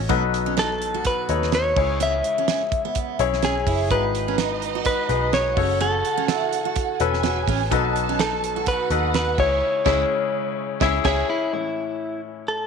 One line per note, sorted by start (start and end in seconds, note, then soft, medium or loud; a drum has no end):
0.00 0.12 C#4 medium
0.00 0.09 F#4 medium
0.00 0.09 A4 medium
0.00 0.11 D#5 loud
0.09 1.14 B1 medium
0.09 0.77 B2 medium
0.09 0.77 F#3 medium
0.09 0.22 B3 loud
0.09 0.78 D#4 medium
0.09 0.78 F#4 medium
0.09 0.78 A4 medium
0.09 0.79 B4 medium
0.09 kick loud
0.09 closed hi-hat medium
0.34 closed hi-hat medium
0.46 0.56 C#4 medium
0.57 0.70 D#4 medium
0.57 1.06 A4 medium
0.57 snare loud
0.57 closed hi-hat medium
0.82 closed hi-hat medium
0.94 1.27 F#4 medium
1.05 1.54 B4 medium
1.05 kick medium
1.05 closed hi-hat loud
1.29 1.73 D#2 medium
1.29 1.76 D#4 medium
1.29 1.76 F#4 medium
1.29 1.77 A4 medium
1.29 1.76 C#5 medium
1.29 closed hi-hat medium
1.42 snare soft
1.52 1.98 C#5 medium
1.52 snare loud
1.52 closed hi-hat medium
1.76 2.21 C#2 loud
1.76 2.44 C#3 medium
1.76 2.44 G#3 medium
1.76 2.53 C#4 medium
1.76 2.54 E4 medium
1.76 2.54 G#4 medium
1.76 2.54 C#5 medium
1.76 kick loud
1.76 crash medium
2.00 2.13 B3 medium
2.00 3.44 E5 loud
2.00 closed hi-hat medium
2.24 closed hi-hat medium
2.38 2.47 C#4 medium
2.48 2.60 C#4 medium
2.48 snare loud
2.48 closed hi-hat medium
2.72 kick loud
2.72 closed hi-hat medium
2.85 3.17 B3 medium
2.95 kick medium
2.95 closed hi-hat loud
3.19 3.64 B1 medium
3.19 3.71 C#4 medium
3.19 3.71 E4 medium
3.19 3.71 G#4 medium
3.19 3.71 C#5 loud
3.19 closed hi-hat medium
3.33 snare soft
3.43 3.56 C#4 medium
3.43 3.91 G#4 medium
3.43 snare loud
3.43 closed hi-hat medium
3.67 3.91 F#1 medium
3.67 3.80 E4 medium
3.67 kick medium
3.67 open hi-hat medium
3.91 4.95 G#1 medium
3.91 4.58 G#2 medium
3.91 4.58 D#3 medium
3.91 4.04 B3 medium
3.91 4.59 D#4 medium
3.91 5.54 D#4 medium
3.91 4.59 F#4 medium
3.91 4.60 G#4 medium
3.91 4.85 B4 medium
3.91 4.60 B4 medium
3.91 5.54 D#5 medium
3.91 kick loud
3.91 closed hi-hat medium
4.15 closed hi-hat medium
4.28 4.38 C#4 medium
4.38 4.51 D#4 medium
4.38 snare loud
4.38 closed hi-hat medium
4.62 closed hi-hat medium
4.75 5.07 F#4 medium
4.85 5.33 B4 medium
4.85 kick medium
4.85 closed hi-hat loud
5.09 5.54 B1 medium
5.09 5.57 D#4 medium
5.09 5.55 F#4 medium
5.09 5.57 G#4 medium
5.09 5.57 B4 medium
5.09 closed hi-hat medium
5.33 5.81 C#5 medium
5.33 snare loud
5.33 closed hi-hat medium
5.56 6.01 F#1 medium
5.56 6.25 C#3 medium
5.56 6.34 C#4 medium
5.56 6.97 F#4 medium
5.56 6.34 F#4 medium
5.56 6.34 A4 medium
5.56 6.34 C#5 medium
5.56 6.97 F#5 medium
5.56 kick loud
5.56 open hi-hat medium
5.81 5.93 B3 medium
5.81 7.20 A4 medium
5.81 closed hi-hat medium
6.05 closed hi-hat medium
6.18 6.28 C#4 medium
6.28 6.41 E4 medium
6.28 snare loud
6.28 closed hi-hat medium
6.53 closed hi-hat medium
6.65 6.98 F#4 medium
6.76 kick medium
6.76 closed hi-hat loud
6.99 7.44 E1 medium
6.99 7.52 C#4 medium
6.99 7.52 F#4 medium
6.99 7.70 G#4 medium
6.99 7.52 A4 medium
6.99 7.52 B4 loud
6.99 7.70 G#5 medium
6.99 closed hi-hat medium
7.14 snare soft
7.23 7.36 F#4 medium
7.23 snare loud
7.23 closed hi-hat medium
7.48 7.70 A1 loud
7.48 7.61 C#4 medium
7.48 kick medium
7.48 open hi-hat medium
7.71 8.76 B1 medium
7.71 8.39 B2 medium
7.71 8.39 F#3 medium
7.71 7.84 B3 medium
7.71 8.40 D#4 medium
7.71 8.40 F#4 medium
7.71 8.40 A4 medium
7.71 8.65 A4 medium
7.71 8.41 B4 medium
7.71 8.65 A5 medium
7.71 kick loud
7.71 closed hi-hat medium
7.96 closed hi-hat medium
8.09 8.19 C#4 medium
8.19 8.32 D#4 medium
8.19 8.68 A4 medium
8.19 snare loud
8.19 closed hi-hat medium
8.44 closed hi-hat medium
8.56 8.88 F#4 medium
8.66 9.37 F#4 medium
8.66 9.14 B4 medium
8.66 9.37 F#5 medium
8.66 kick medium
8.66 closed hi-hat medium
8.90 9.35 D#2 medium
8.90 9.38 D#4 medium
8.90 9.38 F#4 medium
8.90 9.38 A4 medium
8.90 9.38 B4 medium
8.90 closed hi-hat medium
9.14 9.37 B4 medium
9.14 snare loud
9.14 closed hi-hat medium
9.38 9.60 C#2 loud
9.38 9.61 C#3 medium
9.38 9.61 G#3 medium
9.38 9.62 C#4 medium
9.38 9.61 E4 medium
9.38 9.62 E4 medium
9.38 9.62 G#4 medium
9.38 9.63 C#5 medium
9.38 10.78 C#5 loud
9.38 9.61 E5 medium
9.38 kick medium
9.38 crash medium
9.85 10.02 C#2 loud
9.85 10.02 C#3 loud
9.85 10.02 G#3 loud
9.85 10.02 C#4 medium
9.85 10.02 E4 loud
9.85 10.03 G#4 medium
9.85 10.03 C#5 medium
9.85 10.02 E5 loud
9.85 kick medium
9.85 snare medium
9.85 crash medium
10.81 10.98 C#2 medium
10.81 10.98 C#4 medium
10.81 10.97 E4 loud
10.81 10.98 E4 loud
10.81 10.98 G#4 loud
10.81 10.98 C#5 loud
10.81 10.97 E5 loud
10.81 kick loud
10.81 snare loud
11.05 11.21 C#2 medium
11.05 11.22 C#4 medium
11.05 11.21 E4 loud
11.05 11.22 E4 medium
11.05 11.29 G#4 medium
11.05 11.22 G#4 medium
11.05 11.22 C#5 medium
11.05 11.21 E5 loud
11.05 kick loud
11.05 snare loud
11.05 crash medium
11.30 11.52 E4 medium
11.52 12.67 A2 soft
11.52 12.67 E3 soft
11.52 12.21 C#4 medium
11.52 12.21 E4 soft
11.52 12.20 E4 medium
11.52 12.21 A4 soft
11.52 12.21 C#5 medium
12.48 12.67 A4 medium